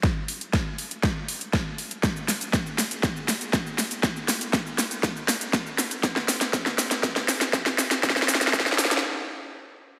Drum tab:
HH |x---o-x-x---o-x-x---o-x-x---o-x-|x---o-x-x---o-x-x---o-x-x---o-x-|x---o-x-x---o-x-x---o-x-x---o-x-|x---o-x-x---o-x-x---o-x-x---o-x-|
SH |--------------------------------|x-x-x-x-x-x-x-x-x-x-x-x-x-x-x-x-|x-x-x-x-x-x-x-x-x-x-x-x-x-x-x-x-|x-x-x-x-x-x-x-x-x-x-x-x-x-x-x-x-|
SD |o-------o-------o-------o-------|o---o---o---o---o---o---o---o---|o---o---o---o---o---o---o---o---|o-o-o-o-o-o-o-o-o-o-o-o-o-o-o-o-|
BD |o-------o-------o-------o-------|o-------o-------o-------o-------|o-------o-------o-------o-------|o-------o-------o-------o-------|

HH |x---o-x-x---o-x-----------------|
SH |x-x-x-x-x-x-x-x-----------------|
SD |oooooooooooooooo----------------|
BD |o-------o-----------------------|